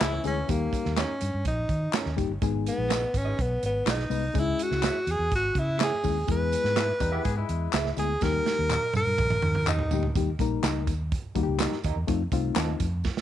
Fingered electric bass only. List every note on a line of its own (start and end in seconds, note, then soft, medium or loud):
0.01 0.18 C#2 medium
0.25 0.42 D2 medium
0.49 0.66 D#2 loud
0.86 1.03 D#2 medium
1.22 1.30 G2 medium
1.34 1.42 G2 medium
1.45 1.63 A#1 medium
1.69 1.87 D#3 loud
2.06 2.15 D#2 medium
2.18 2.27 F#1 medium
2.29 2.38 G1 medium
2.42 2.68 G#1 loud
2.78 3.04 A#1 medium
3.14 3.32 G#1 medium
3.39 3.56 B1 medium
3.63 3.80 G#1 medium
3.86 4.04 B1 medium
4.10 4.28 C2 medium
4.35 4.53 C#2 loud
4.71 4.89 C#2 loud
5.07 5.16 E2 medium
5.19 5.28 E2 medium
5.32 5.49 G#1 medium
5.55 5.90 C#3 medium
6.05 6.22 D#2 medium
6.29 6.55 E2 loud
6.64 6.90 G#2 loud
7.00 7.18 E2 medium
7.25 7.43 G#2 medium
7.49 7.67 E2 medium
7.73 7.91 C#2 loud
7.97 8.15 D2 medium
8.22 8.39 D#2 loud
8.59 8.76 D#2 loud
8.95 9.03 G2 medium
9.06 9.15 G2 medium
9.19 9.36 A#1 medium
9.42 9.77 D#3 loud
9.91 10.08 D2 medium
10.15 10.33 D#2 medium
10.39 10.57 A#1 medium
10.63 10.87 C#2 medium
10.87 11.13 D#2 medium
11.35 11.44 D#2 medium
11.48 11.65 C#2 medium
11.85 11.93 D#2 medium
11.96 12.05 E2 medium
12.08 12.26 F2 loud
12.32 12.50 C2 medium
12.56 12.74 D#2 loud
12.80 13.07 F2 loud